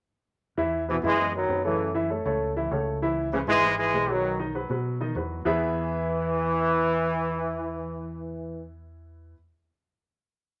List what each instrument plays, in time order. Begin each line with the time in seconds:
0.58 fingered electric bass E2, upright piano E3 E4 E5
0.88 trombone section B2 E3, upright piano B3 B4
1.03 fingered electric bass F#2, upright piano E3 E4 E5, trombone section E3 G#3
1.19 upright piano B3 B4
1.34 trombone section D#3 F#3
1.49 fingered electric bass F#2, upright piano B3 B4
1.64 trombone section C#3 E3, upright piano A3 A4 C#5
1.94 upright piano E3 E4 E5
2.10 upright piano A3 A4 C#5
2.25 fingered electric bass C#2, upright piano A3 A4 C#5
2.56 upright piano E3 E4 E5
2.71 fingered electric bass C#2, upright piano A3 A4 C#5
3.02 upright piano E3 E4 E5
3.32 trombone section C#3 E3, upright piano G#3 G#4 B4
3.47 fingered electric bass G#1, upright piano E3 E4 E5, trombone section E3 G#3
3.63 upright piano G#3 G#4 B4
3.78 trombone section E3 G#3
3.93 fingered electric bass B1, upright piano G#3 G#4 B4
4.09 trombone section D#3 F#3, upright piano F#3 F#4 B4
4.39 upright piano D#3 D#4 D#5
4.55 upright piano F#3 F#4 B4
4.69 fingered electric bass B2, upright piano F#3 F#4 B4
5.00 upright piano D#3 D#4 D#5
5.15 fingered electric bass E2, upright piano F#3 F#4 B4
5.45 fingered electric bass E2, upright piano E3 B3 E4 G#4 B4 E5, trombone section E3